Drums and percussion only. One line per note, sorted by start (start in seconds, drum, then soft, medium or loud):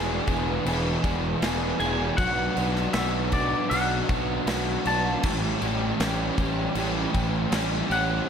0.27 kick medium
0.27 crash medium
0.66 crash medium
1.04 kick medium
1.04 crash medium
1.42 snare loud
1.42 crash medium
1.80 crash medium
2.18 kick loud
2.18 crash medium
2.57 crash medium
2.76 snare soft
2.93 snare loud
2.93 crash medium
3.32 kick medium
3.32 crash medium
3.71 crash medium
4.09 kick medium
4.09 crash medium
4.47 snare loud
4.47 crash medium
4.85 crash medium
5.23 kick loud
5.23 crash medium
5.62 crash medium
6.00 snare loud
6.00 crash medium
6.38 kick medium
6.38 crash medium
6.75 crash medium
7.15 kick medium
7.15 crash medium
7.52 snare loud
7.52 crash medium
7.91 crash medium